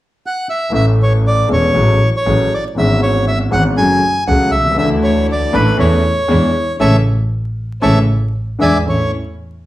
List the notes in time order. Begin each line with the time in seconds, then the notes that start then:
0.26 F#5
0.50 E5
0.70 A1 A2 E3 A3 C#4 A4
0.75 E5
1.03 C#5
1.27 D5
1.48 E1 E2 E3 A3 C#4 A4
1.53 C#5
1.74 A1 A2 F#3 A3 C#4 G#4
2.17 C#5
2.26 A1 A2 F#3 A3 C#4 G#4
2.54 D5
2.75 G#1 G#2 E3 B3 C#4 G#4 E5
3.03 C#5
3.28 E5
3.51 G#1 G#2 E3 B3 C#4 G#4 F#5
3.77 F#1 F#2 F#3 A3 C#4 G#4 G#5
4.27 C#2 C#3 F#3 A3 C#4 G#4 F#5
4.51 C2 E5
4.58 B1
4.64 C2
4.71 C#2 E3
4.77 D2 D3 A3 D4 E4 A4 E5
5.04 C#5
5.32 D5
5.53 A1 A2 E3 A3 D4 E4 A4 B4
5.77 E2 E3 A3 C#4 E4 A4 C#5
6.28 E2 E3 G#3 B3 D4 E4 G#4
6.80 A1 C#3 E3 A3 C#4 E4 C#5 E5 A5
7.82 A1 C#3 E3 A3 C#4 E4 C#5 E5 A5
8.59 E2 D3 E3 G#3 B3 D4 E4 D5 E5 G#5
8.86 A1 A3 C#4 E4 A4 C#5